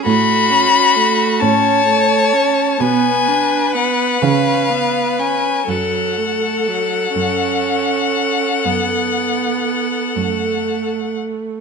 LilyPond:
<<
  \new Staff \with { instrumentName = "Violin" } { \time 12/8 \key fis \minor \tempo 4. = 41 b''4. a''4. gis''4 fis''8 eis''4 gis''8 | fis''1~ fis''4. r8 | }
  \new Staff \with { instrumentName = "Violin" } { \time 12/8 \key fis \minor fis'4. cis''4. b'2. | a'1~ a'4~ a'16 r8. | }
  \new Staff \with { instrumentName = "Viola" } { \time 12/8 \key fis \minor a8 cis'8 a8 cis'8 a8 cis'8 b8 d'8 b8 cis'8 b8 cis'8 | fis8 a8 fis8 cis'4. b4. a4. | }
  \new Staff \with { instrumentName = "Cello" } { \clef bass \time 12/8 \key fis \minor a,4. a,4. b,4. cis4. | fis,4. fis,4. fis,4. fis,4. | }
>>